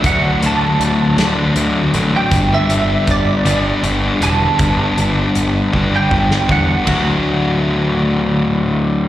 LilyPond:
<<
  \new Staff \with { instrumentName = "Clean electric guitar" } { \time 6/8 \key d \major \tempo 4. = 53 fis''8 a''2~ a''16 g''16~ | g''16 e''8. d''4 r8 a''8~ | a''4.~ a''16 g''8. fis''8 | r2. | }
  \new Staff \with { instrumentName = "Distorted electric guitar" } { \clef bass \time 6/8 \key d \major <d fis a d'>8 <d fis a d'>4 <d fis a d'>8 <d fis a d'>8 <d fis a d'>8 | <g, d g b d'>8 <g, d g b d'>4 <g, d g b d'>8 <g, d g b d'>8 <g, d g b d'>8 | <g, d g b d'>8 <g, d g b d'>4 <g, d g b d'>8 <g, d g b d'>8 <g, d g b d'>8 | <d fis a d' fis'>2. | }
  \new Staff \with { instrumentName = "Picked electric bass" } { \clef bass \time 6/8 \key d \major d,8 d,8 d,8 d,8 d,8 a,,8 | g,,8 g,,8 g,,8 g,,8 g,,8 e,,8 | g,,8 g,,8 g,,8 g,,8 g,,8 e,8 | d,2. | }
  \new DrumStaff \with { instrumentName = "Drums" } \drummode { \time 6/8 <hh bd>8 hh8 hh8 <hh sn>8 hh8 hh8 | <hh bd>8 hh8 <hh bd>8 hh8 hh8 hh8 | <hh bd>8 hh8 hh8 bd8 bd16 sn16 bd8 | <bd cymr>4. r4. | }
>>